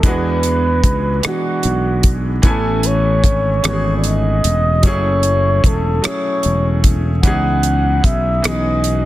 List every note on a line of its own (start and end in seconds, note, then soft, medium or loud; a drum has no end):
0.03 0.80 E2 medium
0.03 1.08 E3 medium
0.03 1.09 G#3 medium
0.03 1.10 B3 medium
0.03 1.10 D4 medium
0.03 kick medium
0.03 closed hi-hat medium
0.08 1.11 F#4 medium
0.08 1.26 B4 medium
0.43 closed hi-hat soft
0.84 1.20 C#2 medium
0.84 kick medium
0.84 closed hi-hat medium
1.23 2.28 E3 medium
1.23 2.29 G#3 soft
1.23 2.29 B3 medium
1.23 2.30 D4 soft
1.23 muted fretless electric bass stroke soft
1.23 cross-stick loud
1.23 closed hi-hat medium
1.28 2.30 F#4 medium
1.28 2.15 F#4 medium
1.63 2.40 B1 medium
1.63 closed hi-hat soft
2.03 kick medium
2.03 closed hi-hat medium
2.42 3.20 A1 medium
2.42 3.48 E3 medium
2.42 3.48 A3 medium
2.42 3.49 B3 medium
2.42 3.49 C#4 medium
2.42 kick medium
2.42 closed hi-hat medium
2.47 2.88 A4 medium
2.47 3.50 G#5 medium
2.83 3.65 C#5 medium
2.83 closed hi-hat soft
3.24 kick medium
3.24 closed hi-hat medium
3.62 4.40 G#1 medium
3.62 4.68 E3 medium
3.62 4.68 A3 medium
3.62 4.69 B3 soft
3.62 4.70 C#4 medium
3.62 cross-stick loud
3.62 closed hi-hat medium
3.67 3.72 F#4 soft
3.67 3.96 C#5 loud
3.73 4.73 G#4 medium
3.97 4.08 D5 medium
4.04 4.88 D#5 loud
4.04 closed hi-hat soft
4.44 4.84 E1 medium
4.44 closed hi-hat medium
4.82 5.60 F#1 medium
4.82 5.88 F#3 medium
4.82 5.88 A3 medium
4.82 5.89 C#4 medium
4.82 5.90 E4 medium
4.82 5.68 C#5 loud
4.82 kick medium
4.82 closed hi-hat medium
4.87 5.90 G#4 medium
5.23 closed hi-hat soft
5.64 6.00 E1 medium
5.64 6.07 A4 medium
5.64 kick medium
5.64 closed hi-hat medium
6.02 7.08 F#3 medium
6.02 7.08 A3 medium
6.02 7.09 C#4 medium
6.02 7.09 E4 soft
6.02 6.85 C#5 medium
6.02 cross-stick loud
6.02 closed hi-hat medium
6.07 7.10 G#4 medium
6.43 7.21 E1 medium
6.43 closed hi-hat soft
6.84 kick medium
6.84 closed hi-hat medium
7.23 8.00 C#2 medium
7.23 8.28 E3 medium
7.23 8.29 B3 medium
7.23 8.29 C#4 medium
7.23 8.30 D#4 medium
7.23 8.07 F#5 medium
7.23 kick medium
7.23 closed hi-hat medium
7.27 8.30 G#4 medium
7.63 closed hi-hat soft
8.04 8.40 B1 medium
8.04 8.48 E5 medium
8.04 kick medium
8.04 closed hi-hat medium
8.42 9.05 B1 medium
8.42 9.05 E3 medium
8.42 9.05 B3 soft
8.42 9.05 C#4 medium
8.42 9.05 D#4 soft
8.42 9.05 D#5 medium
8.42 cross-stick loud
8.42 closed hi-hat medium
8.47 9.05 G#4 medium
8.84 closed hi-hat soft